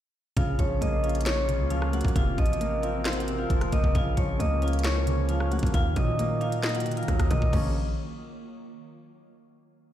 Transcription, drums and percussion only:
0.37 kick, closed hi-hat
0.59 kick, closed hi-hat
0.82 closed hi-hat
1.04 closed hi-hat
1.09 closed hi-hat
1.15 closed hi-hat
1.21 closed hi-hat
1.26 finger snap, snare, closed hi-hat
1.49 closed hi-hat
1.70 closed hi-hat
1.82 cross-stick
1.93 closed hi-hat
2.01 kick, closed hi-hat
2.08 closed hi-hat
2.16 kick, closed hi-hat
2.38 kick, closed hi-hat
2.46 closed hi-hat
2.53 closed hi-hat
2.61 closed hi-hat
2.83 closed hi-hat
3.05 finger snap, snare, closed hi-hat
3.13 closed hi-hat
3.20 closed hi-hat
3.28 closed hi-hat
3.50 kick, closed hi-hat
3.61 cross-stick, closed hi-hat
3.72 kick, closed hi-hat
3.84 kick
3.95 kick, closed hi-hat
4.17 kick, closed hi-hat
4.40 closed hi-hat
4.62 closed hi-hat
4.68 closed hi-hat
4.73 closed hi-hat
4.79 closed hi-hat
4.84 finger snap, snare, closed hi-hat
5.07 closed hi-hat
5.29 closed hi-hat
5.40 cross-stick
5.52 closed hi-hat
5.59 kick, closed hi-hat
5.67 closed hi-hat
5.74 kick, closed hi-hat
5.96 kick, closed hi-hat
6.19 closed hi-hat
6.41 closed hi-hat
6.52 closed hi-hat
6.63 finger snap, snare, closed hi-hat
6.69 closed hi-hat
6.75 closed hi-hat
6.80 closed hi-hat
6.86 closed hi-hat
6.92 closed hi-hat
6.97 closed hi-hat
7.03 closed hi-hat
7.08 kick, cross-stick, closed hi-hat
7.20 kick, cross-stick, closed hi-hat
7.31 kick, closed hi-hat
7.42 kick
7.53 kick, crash

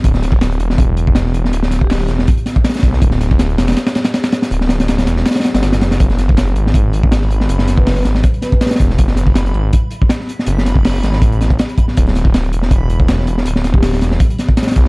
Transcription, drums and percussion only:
0.04 kick, closed hi-hat
0.14 snare, closed hi-hat
0.23 snare, closed hi-hat
0.32 kick, snare
0.41 snare, closed hi-hat
0.52 closed hi-hat
0.60 closed hi-hat
0.70 snare
0.78 kick, closed hi-hat
0.97 closed hi-hat
1.07 kick
1.15 snare, closed hi-hat
1.26 snare
1.34 closed hi-hat
1.45 snare
1.53 closed hi-hat
1.63 snare
1.71 snare, closed hi-hat
1.81 kick
1.90 snare, closed hi-hat, open hi-hat
2.00 snare
2.08 snare, closed hi-hat
2.19 snare
2.27 kick, closed hi-hat, open hi-hat
2.37 closed hi-hat
2.46 snare, closed hi-hat
2.56 kick, closed hi-hat
2.64 snare, closed hi-hat
2.69 snare, closed hi-hat
2.74 snare, closed hi-hat
2.78 snare, closed hi-hat
2.83 kick, closed hi-hat
2.93 snare
3.02 kick, closed hi-hat
3.11 snare, closed hi-hat
3.21 snare, closed hi-hat
3.31 kick, snare
3.39 snare, closed hi-hat
3.49 closed hi-hat
3.58 snare, closed hi-hat
3.67 snare, closed hi-hat
3.72 snare, closed hi-hat
3.77 snare, closed hi-hat
3.87 snare, closed hi-hat
3.95 snare, closed hi-hat
4.04 snare, closed hi-hat
4.14 snare, closed hi-hat
4.24 snare, closed hi-hat
4.32 snare, closed hi-hat
4.42 snare, closed hi-hat
4.51 closed hi-hat
4.61 snare
4.69 snare, closed hi-hat
4.80 snare, closed hi-hat
4.88 snare, closed hi-hat
4.98 snare, closed hi-hat
5.07 snare, closed hi-hat
5.17 snare
5.26 snare, closed hi-hat
5.31 snare, closed hi-hat
5.35 snare, closed hi-hat
5.40 snare, closed hi-hat
5.44 snare, closed hi-hat
5.54 snare, closed hi-hat
5.62 snare, closed hi-hat
5.72 snare, closed hi-hat
5.81 snare, closed hi-hat
5.91 snare, closed hi-hat
6.00 kick, closed hi-hat
6.10 snare, closed hi-hat
6.18 snare, closed hi-hat
6.29 kick, snare
6.37 snare, closed hi-hat
6.47 closed hi-hat
6.56 closed hi-hat
6.67 snare
6.74 kick, closed hi-hat
6.93 closed hi-hat
7.03 kick
7.12 snare, closed hi-hat
7.21 snare
7.30 closed hi-hat
7.41 snare
7.49 closed hi-hat
7.59 snare
7.68 snare, closed hi-hat
7.77 kick
7.86 snare, closed hi-hat, open hi-hat
7.96 snare
8.05 snare, closed hi-hat
8.15 snare
8.23 kick, closed hi-hat, open hi-hat
8.34 closed hi-hat
8.42 snare, closed hi-hat
8.52 kick, closed hi-hat
8.61 snare, closed hi-hat
8.66 snare, closed hi-hat
8.71 snare, closed hi-hat
8.76 snare, closed hi-hat
8.79 kick, closed hi-hat
8.90 snare
8.98 kick, closed hi-hat
9.08 snare, closed hi-hat
9.16 snare, closed hi-hat
9.27 kick, snare
9.35 snare, closed hi-hat
9.46 closed hi-hat
9.54 closed hi-hat
9.73 kick, closed hi-hat
9.91 closed hi-hat
10.02 kick
10.09 snare, closed hi-hat
10.20 snare
10.29 closed hi-hat
10.39 snare
10.46 closed hi-hat
10.58 snare
10.66 snare, closed hi-hat
10.76 kick
10.85 snare, closed hi-hat, open hi-hat
10.94 snare
11.03 snare, closed hi-hat
11.13 snare
11.22 kick, closed hi-hat, open hi-hat
11.32 closed hi-hat
11.41 snare, closed hi-hat
11.50 kick, closed hi-hat
11.59 snare, closed hi-hat
11.69 closed hi-hat
11.77 kick, closed hi-hat
11.88 snare
11.97 kick, closed hi-hat
12.07 snare, closed hi-hat
12.15 snare, closed hi-hat
12.25 kick, snare
12.34 snare, closed hi-hat
12.44 closed hi-hat
12.53 closed hi-hat
12.62 snare
12.71 kick, closed hi-hat
12.90 closed hi-hat
13.00 kick
13.08 snare, closed hi-hat
13.19 snare
13.27 closed hi-hat
13.38 snare
13.46 closed hi-hat
13.56 snare
13.64 snare, closed hi-hat
13.74 kick
13.82 snare, closed hi-hat, open hi-hat
13.92 snare
14.01 snare, closed hi-hat
14.11 snare
14.20 kick, closed hi-hat, open hi-hat
14.30 closed hi-hat
14.38 snare, closed hi-hat
14.48 kick, closed hi-hat
14.57 snare, closed hi-hat
14.63 snare, closed hi-hat
14.67 snare, closed hi-hat
14.71 snare, closed hi-hat
14.76 kick, closed hi-hat

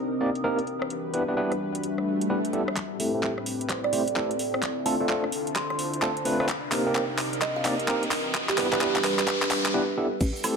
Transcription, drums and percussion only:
0.35 closed hi-hat
0.59 closed hi-hat
0.67 closed hi-hat
0.82 cross-stick
0.90 closed hi-hat
1.14 closed hi-hat
1.52 cross-stick, closed hi-hat
1.75 closed hi-hat
1.83 closed hi-hat
1.98 cross-stick
2.21 closed hi-hat
2.45 closed hi-hat
2.53 closed hi-hat
2.68 cross-stick
2.76 kick, clap, closed hi-hat
3.00 open hi-hat
3.23 kick, clap
3.38 cross-stick
3.46 open hi-hat
3.61 closed hi-hat
3.69 kick, clap, closed hi-hat
3.84 cross-stick
3.93 open hi-hat
4.08 closed hi-hat
4.16 kick, clap
4.31 closed hi-hat
4.39 open hi-hat
4.54 cross-stick
4.62 kick, clap, closed hi-hat
4.86 open hi-hat
5.09 kick, clap
5.24 cross-stick
5.32 open hi-hat
5.47 closed hi-hat
5.56 kick, clap, closed hi-hat
5.70 cross-stick
5.79 open hi-hat
5.93 closed hi-hat
6.02 kick, clap
6.17 closed hi-hat
6.25 open hi-hat
6.40 cross-stick
6.49 kick, clap, closed hi-hat
6.72 clap, open hi-hat
6.95 kick, clap
7.18 clap, open hi-hat
7.33 closed hi-hat
7.42 kick, clap, closed hi-hat
7.65 clap, open hi-hat
7.80 closed hi-hat
7.88 kick, clap
8.03 closed hi-hat
8.11 clap, open hi-hat
8.35 kick, clap, closed hi-hat
8.49 clap
8.58 clap, open hi-hat
8.73 clap
8.81 kick, clap
8.96 clap
9.04 clap, open hi-hat
9.19 clap, closed hi-hat
9.28 kick, clap, closed hi-hat
9.42 clap
9.51 clap, open hi-hat
9.66 clap, closed hi-hat
10.21 kick, closed hi-hat, crash, shaker
10.36 shaker
10.44 open hi-hat, high woodblock, shaker

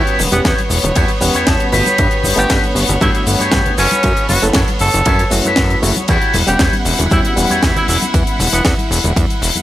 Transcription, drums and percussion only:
0.07 closed hi-hat
0.19 open hi-hat, high conga, low conga, shaker
0.33 closed hi-hat, shaker
0.45 kick, snare, closed hi-hat, ride, shaker
0.58 closed hi-hat, high conga
0.70 open hi-hat, shaker
0.84 closed hi-hat, low conga, shaker
0.96 kick, closed hi-hat, ride, high conga, shaker
1.08 closed hi-hat
1.22 open hi-hat, shaker
1.35 closed hi-hat, high conga, shaker
1.47 kick, snare, closed hi-hat, ride, shaker
1.60 closed hi-hat
1.72 open hi-hat, low conga, shaker
1.86 closed hi-hat, high conga, shaker
1.98 kick, closed hi-hat, ride, shaker
2.11 closed hi-hat
2.24 open hi-hat, high conga, low conga, shaker
2.37 closed hi-hat, shaker
2.50 kick, snare, closed hi-hat, ride, shaker
2.63 closed hi-hat, high conga
2.76 open hi-hat, shaker
2.88 closed hi-hat, low conga, shaker
3.01 kick, closed hi-hat, ride, high conga, shaker
3.15 closed hi-hat
3.27 open hi-hat, shaker
3.40 closed hi-hat, high conga, shaker
3.52 kick, snare, closed hi-hat, ride, shaker
3.66 closed hi-hat, low conga
3.78 open hi-hat, shaker
3.91 closed hi-hat, high conga, shaker
4.03 kick, closed hi-hat, ride, shaker
4.17 closed hi-hat
4.29 open hi-hat, high conga, low conga, shaker
4.43 closed hi-hat, shaker
4.53 kick, snare, closed hi-hat, ride, shaker
4.68 closed hi-hat, high conga
4.79 open hi-hat, shaker
4.94 closed hi-hat, low conga, shaker
5.05 kick, closed hi-hat, ride, high conga, shaker
5.19 closed hi-hat
5.31 open hi-hat, shaker
5.44 closed hi-hat, high conga, shaker
5.56 kick, snare, closed hi-hat, ride, shaker
5.70 closed hi-hat
5.83 open hi-hat, low conga, shaker
5.96 closed hi-hat, high conga, shaker
6.08 kick, closed hi-hat, ride, shaker
6.21 closed hi-hat
6.33 open hi-hat, high conga, low conga, shaker
6.48 closed hi-hat, shaker
6.59 kick, snare, closed hi-hat, ride, shaker
6.73 closed hi-hat, high conga
6.85 open hi-hat, shaker
6.99 closed hi-hat, low conga, shaker
7.11 kick, closed hi-hat, ride, high conga, shaker
7.25 closed hi-hat
7.37 open hi-hat, shaker
7.50 closed hi-hat, high conga, shaker
7.63 kick, snare, closed hi-hat, ride, shaker
7.76 closed hi-hat, low conga
7.88 open hi-hat, shaker
8.02 closed hi-hat, high conga, shaker
8.14 kick, closed hi-hat, ride, shaker
8.27 closed hi-hat
8.39 open hi-hat, high conga, low conga, shaker
8.53 closed hi-hat, shaker
8.65 kick, snare, closed hi-hat, ride, shaker
8.78 closed hi-hat, high conga
8.92 open hi-hat, shaker
9.04 closed hi-hat, low conga, shaker
9.16 kick, closed hi-hat, ride, high conga, shaker
9.30 closed hi-hat
9.42 open hi-hat, shaker
9.56 closed hi-hat, high conga, shaker

